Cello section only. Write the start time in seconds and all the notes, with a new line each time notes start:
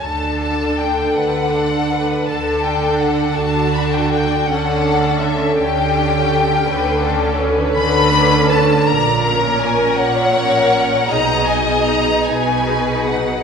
0.03 D3
1.14 D3
2.27 D3
3.36 D3
4.49 D3
5.58 D3
6.66 D3
7.76 D3
8.87 A#2
9.96 A#2
11.08 B2
12.26 B2